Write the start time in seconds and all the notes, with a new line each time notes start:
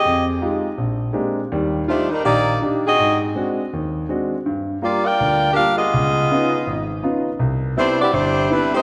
Already playing: C4 G4 G#4 D#5
0.05 F2
0.42 G#3 D#4 F4 G4
0.78 A#1
1.13 G#3 A#3 C4 D4 G4
1.52 D#2 G3
1.88 A3 D4 D#4 F4 G4 C5
2.11 G3 D4 D#4 A#4
2.25 A#1 D#3 A#3 D#4 G4 D5
2.62 D4 D#4 G4
2.87 C4 F#4 G#4 D#5
2.99 G#2
3.35 G#3 C4 D4 F#4
3.73 D#2
4.09 G#3 C4 D4 F#4
4.46 G2
4.82 G3 A#3 F4 G4 D5
5.05 F4 A#4 D5 G5
5.20 D2
5.54 G3 A#3 D4 G4 A#4 F5
5.58 F4
5.77 B3 F4 G#4 D#5
5.94 C#2
6.31 B3 C#4 D#4 F4
6.67 G#1
7.03 B3 C#4 D#4 F4
7.39 C2
7.77 G3 B3 C4 D4 E4 C5
8.01 B3 E4 G4 D5
8.13 G1 G3 D4 E4 C5
8.49 G3 B3 C4 D4 E4 B4
8.74 A3 D#4 G4 C5